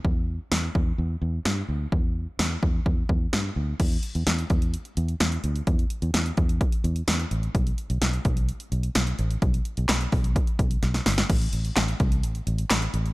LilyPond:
<<
  \new Staff \with { instrumentName = "Fingered electric bass" } { \clef bass \time 4/4 \key a \minor \tempo 4 = 128 e,4 e,8 e,8 e,8 e,8 g,8 d,8 | e,4 e,8 e,8 e,8 e,8 g,8 d,8 | e,8 r16 e,16 e,8 e,8. r16 e,8 e,8 d,8 | e,8 r16 e,16 e,8 e,8. r16 e,8 e,8 a,,8 |
b,,8 r16 b,,16 b,,8 b,,8. r16 b,,8 b,,8 a,,8 | b,,8 r16 b,,16 b,,8 b,,8. r16 b,,8 b,,8 g,,8 | a,,8 a,,8 a,,8 c,8 a,,8 a,,8 a,,8 a,,8 | }
  \new DrumStaff \with { instrumentName = "Drums" } \drummode { \time 4/4 bd4 sn8 bd8 r4 sn4 | bd4 sn8 bd8 bd8 bd8 sn4 | <cymc hh bd>16 hh16 hh16 hh16 <hh sn>16 hh16 <hh bd>16 hh16 hh16 hh16 hh16 hh16 <hh sn>16 hh16 hh16 hh16 | <hh bd>16 hh16 hh16 hh16 <hh sn>16 hh16 <hh bd>16 hh16 <hh bd>16 hh16 hh16 hh16 <hh sn>16 hh16 hh16 hh16 |
<hh bd>16 hh16 hh16 hh16 <hh sn>16 hh16 <hh bd>16 hh16 hh16 hh16 hh16 hh16 <hh sn>16 hh16 hh16 hh16 | <hh bd>16 hh16 hh16 hh16 <hc hh sn>16 hh16 <hho bd>16 hh16 <hh bd>16 hh16 <hh bd>16 hh16 <hh sn>16 <hh sn>16 <hho sn>16 <hh sn>16 | <cymc hh bd>16 hh16 hh16 hh16 <hc hh sn>16 hh16 <hh bd>16 hh16 hh16 hh16 hh16 hh16 <hc hh sn>16 hh16 hh16 hh16 | }
>>